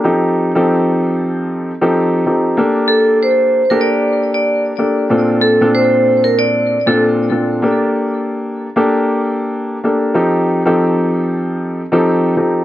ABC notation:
X:1
M:4/4
L:1/16
Q:"Swing 16ths" 1/4=95
K:Gm
V:1 name="Vibraphone"
z16 | z2 A2 c3 B d3 d2 z3 | z2 A2 c3 B d3 A z4 | z16 |
z16 |]
V:2 name="Grand piano"
[F,CEGA]3 [F,CEGA]6- [F,CEGA] z [F,CEGA]3 [F,CEGA]2 | [B,DGA]6 z [B,DGA]6 z [B,DGA]2 | [B,,CDFA]3 [B,,CDFA]6- [B,,CDFA] z [B,,CDFA]3 [B,,CDFA]2 | [B,DGA]6 z [B,DGA]6 z [B,DGA]2 |
[F,CEGA]3 [F,CEGA]6- [F,CEGA] z [F,CEGA]3 [F,CEGA]2 |]